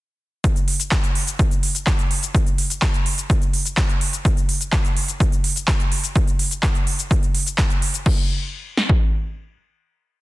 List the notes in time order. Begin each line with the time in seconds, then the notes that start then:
0.44 kick, closed hi-hat, shaker
0.56 closed hi-hat, shaker
0.68 open hi-hat
0.80 closed hi-hat, shaker
0.91 kick, clap, closed hi-hat, shaker
1.04 closed hi-hat, shaker
1.15 open hi-hat
1.27 closed hi-hat, shaker
1.39 kick, closed hi-hat, shaker
1.51 closed hi-hat, shaker
1.63 open hi-hat
1.75 closed hi-hat, shaker
1.87 kick, clap, closed hi-hat, shaker
1.99 closed hi-hat, shaker
2.11 open hi-hat
2.23 closed hi-hat, shaker
2.35 kick, closed hi-hat, shaker
2.46 closed hi-hat, shaker
2.58 open hi-hat
2.70 closed hi-hat, shaker
2.82 kick, clap, closed hi-hat, shaker
2.94 closed hi-hat, shaker
3.06 open hi-hat
3.18 closed hi-hat, shaker
3.30 kick, closed hi-hat, shaker
3.42 closed hi-hat, shaker
3.54 open hi-hat
3.65 closed hi-hat, shaker
3.77 kick, clap, closed hi-hat, shaker
3.89 closed hi-hat, shaker
4.01 open hi-hat
4.13 closed hi-hat, shaker
4.25 kick, closed hi-hat, shaker
4.37 closed hi-hat, shaker
4.49 open hi-hat
4.61 closed hi-hat, shaker
4.72 kick, clap, closed hi-hat, shaker
4.85 closed hi-hat, shaker
4.97 open hi-hat
5.08 closed hi-hat, shaker
5.20 kick, closed hi-hat, shaker
5.32 closed hi-hat, shaker
5.44 open hi-hat
5.56 closed hi-hat, shaker
5.68 kick, clap, closed hi-hat, shaker
5.80 closed hi-hat, shaker
5.92 open hi-hat
6.04 closed hi-hat, shaker
6.15 kick, closed hi-hat, shaker
6.27 closed hi-hat, shaker
6.39 open hi-hat
6.51 closed hi-hat, shaker
6.63 kick, clap, closed hi-hat, shaker
6.75 closed hi-hat, shaker
6.87 open hi-hat
6.99 closed hi-hat, shaker
7.11 kick, closed hi-hat, shaker
7.23 closed hi-hat, shaker
7.35 open hi-hat
7.47 closed hi-hat, shaker
7.58 kick, clap, closed hi-hat, shaker
7.70 closed hi-hat, shaker
7.82 open hi-hat
7.94 closed hi-hat, shaker
8.06 kick, crash
8.77 snare
8.89 kick